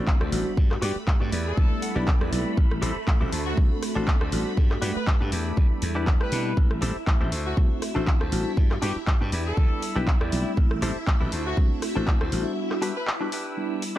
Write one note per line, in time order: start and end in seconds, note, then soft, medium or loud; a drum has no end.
0.00 0.15 A1 medium
0.00 0.30 A3 medium
0.00 6.59 A3 medium
0.00 0.30 C4 medium
0.00 0.30 D4 medium
0.00 0.30 F#4 medium
0.00 6.59 B5 medium
0.00 sub drop medium
0.07 kick loud
0.07 clap loud
0.20 0.30 D2 medium
0.20 0.51 F#4 loud
0.20 0.52 A4 medium
0.20 0.52 C5 medium
0.20 0.52 D5 medium
0.20 cross-stick medium
0.32 0.43 A1 medium
0.32 0.80 G3 loud
0.32 0.80 B3 medium
0.32 0.80 D4 medium
0.32 0.80 F#4 loud
0.32 open hi-hat medium
0.57 0.78 G2 loud
0.57 kick loud
0.71 cross-stick medium
0.71 clap soft
0.82 0.93 G2 medium
0.82 0.90 G3 medium
0.82 0.90 B3 medium
0.82 0.90 D4 medium
0.82 0.96 F#4 loud
0.82 0.90 F#4 medium
0.82 0.96 G4 loud
0.82 0.96 G4 medium
0.82 0.96 B4 loud
0.82 0.96 D5 loud
0.82 open hi-hat loud
0.96 muted slap bass stroke soft
1.07 1.18 G2 medium
1.07 muted clean electric guitar stroke soft
1.07 kick loud
1.07 clap loud
1.20 1.30 G2 loud
1.20 1.27 G3 medium
1.20 1.27 B3 medium
1.20 1.27 D4 medium
1.20 1.31 F#4 medium
1.20 1.31 G4 medium
1.20 1.27 G4 medium
1.20 1.31 B4 medium
1.20 1.31 D5 loud
1.31 1.53 E2 medium
1.31 1.82 E4 loud
1.31 1.82 G4 medium
1.31 1.82 B4 medium
1.31 1.82 D5 loud
1.31 open hi-hat loud
1.46 1.96 A4 loud
1.57 1.68 D2 loud
1.57 1.93 G3 loud
1.57 1.93 B3 medium
1.57 1.93 D4 medium
1.57 1.93 E4 loud
1.57 kick loud
1.82 2.06 F#5 medium
1.82 open hi-hat loud
1.95 2.15 B1 medium
1.95 2.29 G3 medium
1.95 2.30 B3 medium
1.95 2.30 D4 medium
1.95 2.07 E4 loud
1.95 2.30 E4 medium
1.95 2.07 G4 loud
1.95 2.07 B4 loud
1.95 2.08 D5 loud
2.07 kick loud
2.07 clap loud
2.21 2.30 E2 medium
2.21 2.51 E4 medium
2.21 2.52 G4 medium
2.21 2.52 B4 medium
2.21 2.31 D5 medium
2.21 cross-stick medium
2.32 2.43 B1 medium
2.32 2.79 G3 loud
2.32 2.80 A3 medium
2.32 2.80 C4 medium
2.32 2.80 E4 loud
2.32 2.56 D5 medium
2.32 open hi-hat medium
2.57 2.78 A1 loud
2.57 kick loud
2.71 cross-stick medium
2.82 2.93 A1 medium
2.82 2.90 G3 medium
2.82 2.90 A3 medium
2.82 2.90 C4 medium
2.82 2.96 E4 loud
2.82 2.90 E4 loud
2.82 2.96 G4 loud
2.82 2.96 A4 loud
2.82 2.96 C5 loud
2.82 open hi-hat loud
2.96 muted slap bass stroke soft
3.07 3.18 A1 medium
3.07 muted clean electric guitar stroke soft
3.07 kick loud
3.07 clap loud
3.21 3.30 A1 loud
3.21 3.27 G3 medium
3.21 3.27 A3 medium
3.21 3.27 C4 medium
3.21 3.32 E4 medium
3.21 3.27 F#4 loud
3.21 3.32 G4 medium
3.21 3.31 A4 medium
3.21 3.32 C5 medium
3.32 3.53 D2 medium
3.32 3.82 D4 loud
3.32 3.82 F#4 medium
3.32 3.83 A4 medium
3.32 3.83 C5 medium
3.32 open hi-hat loud
3.46 3.58 F#4 medium
3.57 3.68 C2 loud
3.57 3.93 A3 loud
3.57 3.93 C4 medium
3.57 3.93 D4 medium
3.57 3.93 F#4 loud
3.57 kick loud
3.83 cross-stick medium
3.83 open hi-hat loud
3.95 4.15 A1 medium
3.95 4.29 A3 medium
3.95 4.30 C4 medium
3.95 4.07 D4 loud
3.95 4.30 D4 medium
3.95 4.07 F#4 loud
3.95 4.30 F#4 medium
3.95 4.08 A4 loud
3.95 4.08 C5 loud
4.07 kick loud
4.07 clap loud
4.20 4.30 D2 medium
4.20 4.52 D4 medium
4.20 4.52 F#4 medium
4.20 4.52 A4 medium
4.20 4.52 C5 medium
4.20 cross-stick medium
4.32 4.43 A1 medium
4.32 4.79 G3 loud
4.32 4.80 B3 medium
4.32 4.80 D4 medium
4.32 4.80 F#4 loud
4.32 open hi-hat loud
4.57 4.78 G2 loud
4.57 kick loud
4.71 cross-stick medium
4.71 clap soft
4.82 4.93 G2 medium
4.82 4.89 G3 medium
4.82 4.90 B3 medium
4.82 4.96 D4 loud
4.82 4.90 D4 medium
4.82 4.96 F#4 loud
4.82 4.90 F#4 loud
4.82 4.96 G4 loud
4.82 4.96 B4 loud
4.82 open hi-hat loud
4.96 5.07 B4 medium
4.96 muted slap bass stroke soft
5.07 5.18 G2 medium
5.07 kick loud
5.07 clap loud
5.20 5.30 G2 loud
5.20 5.27 G3 medium
5.20 5.27 B3 medium
5.20 5.31 D4 loud
5.20 5.27 D4 medium
5.20 5.32 F#4 medium
5.20 5.31 G4 medium
5.20 5.27 G4 loud
5.20 5.32 B4 medium
5.32 5.53 E2 medium
5.32 5.82 D4 loud
5.32 5.82 E4 medium
5.32 5.82 G4 loud
5.32 5.83 B4 medium
5.32 open hi-hat loud
5.57 5.68 D2 loud
5.57 5.92 G3 loud
5.57 5.93 B3 medium
5.57 5.93 D4 medium
5.57 5.93 E4 loud
5.57 kick loud
5.71 muted slap bass stroke soft
5.82 6.17 E2 medium
5.82 open hi-hat loud
5.95 6.29 G3 medium
5.95 6.29 B3 medium
5.95 6.07 D4 loud
5.95 6.30 D4 medium
5.95 6.07 E4 loud
5.95 6.30 E4 medium
5.95 6.07 G4 loud
5.95 6.07 B4 loud
6.07 kick loud
6.07 clap loud
6.20 6.51 D4 loud
6.20 6.51 E4 medium
6.20 6.52 G4 medium
6.20 6.57 B4 medium
6.20 6.52 B4 loud
6.20 cross-stick medium
6.32 6.53 B2 medium
6.32 6.79 G3 loud
6.32 6.79 A3 medium
6.32 6.80 C4 medium
6.32 6.80 E4 loud
6.32 open hi-hat loud
6.57 6.78 A1 loud
6.57 13.98 E4 medium
6.57 13.98 E5 medium
6.57 kick loud
6.71 cross-stick medium
6.82 6.93 A1 medium
6.82 6.89 G3 medium
6.82 6.89 A3 medium
6.82 6.90 C4 medium
6.82 6.96 E4 loud
6.82 6.90 E4 loud
6.82 6.96 G4 loud
6.82 6.96 A4 loud
6.82 6.96 C5 loud
6.82 open hi-hat loud
7.07 7.18 A1 medium
7.07 kick loud
7.07 clap loud
7.20 7.30 A1 loud
7.20 7.27 G3 medium
7.20 7.27 A3 medium
7.20 7.27 C4 medium
7.20 7.32 E4 medium
7.20 7.27 F#4 loud
7.20 7.31 G4 medium
7.20 7.31 A4 medium
7.20 7.31 C5 loud
7.31 7.53 D2 medium
7.31 7.82 D4 medium
7.31 7.82 F#4 medium
7.31 7.82 A4 medium
7.31 7.82 C5 loud
7.31 open hi-hat medium
7.46 7.58 F#4 medium
7.57 7.68 C2 loud
7.57 7.92 A3 medium
7.57 7.93 C4 medium
7.57 7.93 D4 medium
7.57 7.93 F#4 loud
7.57 kick loud
7.82 cross-stick medium
7.82 open hi-hat loud
7.95 8.15 A1 medium
7.95 8.29 A3 medium
7.95 8.30 C4 medium
7.95 8.07 D4 loud
7.95 8.30 D4 medium
7.95 8.07 F#4 medium
7.95 8.30 F#4 medium
7.95 8.07 A4 loud
7.95 8.07 C5 loud
8.07 kick loud
8.07 clap loud
8.20 8.30 D2 medium
8.20 8.51 D4 loud
8.20 8.51 F#4 medium
8.20 8.52 A4 medium
8.20 8.52 C5 loud
8.20 cross-stick medium
8.32 8.43 A1 medium
8.32 8.79 G3 loud
8.32 8.79 B3 medium
8.32 8.80 D4 medium
8.32 8.80 F#4 loud
8.32 open hi-hat medium
8.57 8.78 G2 loud
8.57 kick loud
8.71 cross-stick medium
8.71 clap soft
8.82 8.93 G2 medium
8.82 8.89 G3 medium
8.82 8.90 B3 medium
8.82 8.96 D4 loud
8.82 8.90 D4 medium
8.82 8.96 F#4 medium
8.82 8.90 F#4 loud
8.82 8.96 G4 loud
8.82 8.96 G4 medium
8.82 8.96 B4 loud
8.82 open hi-hat loud
8.96 muted slap bass stroke soft
9.07 9.18 G2 medium
9.07 kick loud
9.07 clap loud
9.21 9.30 G2 loud
9.21 9.27 G3 medium
9.21 9.27 B3 medium
9.21 9.31 D4 medium
9.21 9.27 D4 medium
9.21 9.32 F#4 medium
9.21 9.27 G4 medium
9.21 9.31 G4 medium
9.21 9.32 B4 medium
9.32 9.53 E2 loud
9.32 9.82 D4 loud
9.32 9.82 E4 medium
9.32 9.83 G4 medium
9.32 9.83 B4 loud
9.32 open hi-hat medium
9.46 9.96 A4 loud
9.57 9.68 D2 loud
9.57 9.93 G3 loud
9.57 9.93 B3 medium
9.57 9.93 D4 medium
9.57 9.93 E4 loud
9.57 kick loud
9.82 open hi-hat loud
9.96 10.15 B1 medium
9.96 10.29 G3 medium
9.96 10.30 B3 medium
9.96 10.07 D4 loud
9.96 10.30 D4 medium
9.96 10.07 E4 medium
9.96 10.30 E4 medium
9.96 10.07 G4 loud
9.96 10.08 B4 loud
10.07 kick loud
10.07 clap loud
10.21 10.30 E2 medium
10.21 10.52 D4 medium
10.21 10.52 E4 medium
10.21 10.52 G4 medium
10.21 10.52 D5 medium
10.21 cross-stick medium
10.32 10.43 B1 medium
10.32 10.79 G3 loud
10.32 10.80 A3 medium
10.32 10.80 C4 medium
10.32 10.80 E4 loud
10.32 open hi-hat medium
10.57 10.78 A1 loud
10.57 kick loud
10.71 cross-stick medium
10.82 10.93 A1 medium
10.82 10.90 G3 medium
10.82 10.90 A3 medium
10.82 10.90 C4 medium
10.82 10.96 E4 loud
10.82 10.90 E4 loud
10.82 10.96 G4 loud
10.82 10.96 A4 loud
10.82 10.96 C5 loud
10.82 open hi-hat loud
11.07 11.18 A1 medium
11.07 kick loud
11.07 clap loud
11.21 11.30 A1 loud
11.21 11.27 G3 medium
11.21 11.27 A3 medium
11.21 11.27 C4 medium
11.21 11.32 E4 loud
11.21 11.27 F#4 loud
11.21 11.32 G4 medium
11.21 11.32 A4 medium
11.21 11.33 B4 loud
11.32 11.53 D2 medium
11.32 11.82 D4 loud
11.32 11.82 F#4 medium
11.32 11.83 A4 medium
11.32 11.83 C5 medium
11.32 open hi-hat medium
11.46 11.58 F#4 medium
11.57 11.68 C2 loud
11.57 11.93 A3 loud
11.57 11.93 C4 medium
11.57 11.93 D4 medium
11.57 11.93 F#4 loud
11.57 kick loud
11.82 cross-stick medium
11.82 open hi-hat loud
11.96 12.15 A1 medium
11.96 12.29 A3 medium
11.96 12.30 C4 medium
11.96 12.07 D4 loud
11.96 12.30 D4 medium
11.96 12.07 F#4 medium
11.96 12.30 F#4 medium
11.96 12.07 A4 loud
11.96 12.08 C5 loud
12.07 kick loud
12.07 clap loud
12.21 12.30 D2 medium
12.21 12.52 D4 medium
12.21 12.52 F#4 medium
12.21 12.52 A4 medium
12.21 12.52 C5 loud
12.21 cross-stick medium
12.32 12.43 A1 medium
12.32 12.79 G3 loud
12.32 12.80 B3 medium
12.32 12.80 D4 medium
12.32 12.80 F#4 loud
12.32 open hi-hat medium
12.71 cross-stick medium
12.71 clap soft
12.82 12.89 G3 medium
12.82 12.90 B3 medium
12.82 12.96 D4 loud
12.82 12.90 D4 medium
12.82 12.96 F#4 medium
12.82 12.90 F#4 loud
12.82 12.96 G4 loud
12.82 12.96 B4 loud
12.82 open hi-hat loud
12.96 13.08 B4 medium
13.07 muted clean electric guitar stroke soft
13.07 clap loud
13.21 13.27 G3 medium
13.21 13.27 B3 medium
13.21 13.31 D4 medium
13.21 13.27 D4 medium
13.21 13.32 F#4 medium
13.21 13.32 G4 medium
13.21 13.27 G4 loud
13.21 13.32 B4 loud
13.32 13.82 D4 medium
13.32 13.82 E4 medium
13.32 13.83 G4 medium
13.32 13.83 B4 loud
13.32 open hi-hat medium
13.57 13.93 G3 loud
13.57 13.93 B3 medium
13.57 13.93 D4 medium
13.57 13.93 E4 loud
13.82 open hi-hat loud